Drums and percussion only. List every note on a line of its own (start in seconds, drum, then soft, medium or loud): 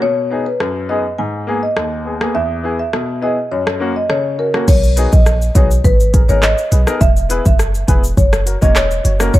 0.60 cross-stick medium
1.77 cross-stick medium
2.21 cross-stick medium
2.93 cross-stick medium
3.67 cross-stick loud
4.10 cross-stick medium
4.54 cross-stick medium
4.68 kick loud
4.68 crash loud
4.68 shaker medium
4.84 shaker medium
4.97 closed hi-hat medium
4.97 shaker medium
5.13 kick loud
5.13 shaker medium
5.26 cross-stick medium
5.26 shaker medium
5.42 shaker medium
5.55 kick medium
5.55 closed hi-hat medium
5.55 shaker medium
5.71 shaker medium
5.84 kick medium
5.84 shaker medium
6.00 shaker medium
6.14 kick loud
6.14 closed hi-hat medium
6.14 shaker medium
6.29 shaker medium
6.43 cross-stick medium
6.43 clap medium
6.43 shaker medium
6.58 shaker medium
6.72 closed hi-hat medium
6.72 shaker medium
6.87 cross-stick medium
6.87 shaker medium
7.01 kick loud
7.01 shaker medium
7.17 shaker medium
7.30 closed hi-hat medium
7.30 shaker medium
7.46 kick loud
7.46 shaker medium
7.59 cross-stick medium
7.59 shaker medium
7.75 shaker medium
7.88 kick medium
7.88 closed hi-hat medium
7.88 shaker medium
8.04 shaker medium
8.17 kick medium
8.17 shaker medium
8.33 cross-stick loud
8.33 shaker medium
8.47 closed hi-hat medium
8.47 shaker medium
8.62 kick loud
8.62 shaker medium
8.76 cross-stick medium
8.76 clap loud
8.76 shaker medium
8.91 shaker medium
9.05 closed hi-hat medium
9.05 shaker medium
9.20 cross-stick loud
9.20 shaker medium
9.34 kick loud
9.34 shaker medium